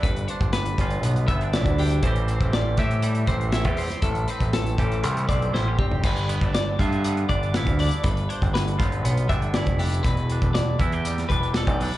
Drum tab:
CC |----------------|----------------|----------------|x---------------|
HH |xxxxxxxxxxxxxxox|xxxxx-xxxxxxxxox|xxxxxxxxxxxx----|xxxxx-xxxxxxxxox|
SD |----o-------o---|----o-o---o-o--o|----o-----o-o---|----o-------o---|
FT |----------------|----------------|---------------o|----------------|
BD |o--o--o---o--o--|o--o--o---o--o--|o--o--o---o---o-|o--o--o---o--o--|

CC |----------------|----------------|
HH |xxxxxxxxxxxxxxox|xxxxx-xxxxxxxxox|
SD |----o-o---o-o---|----o----o--o---|
FT |----------------|----------------|
BD |o--o--o---o--o--|o--o--o---o--o--|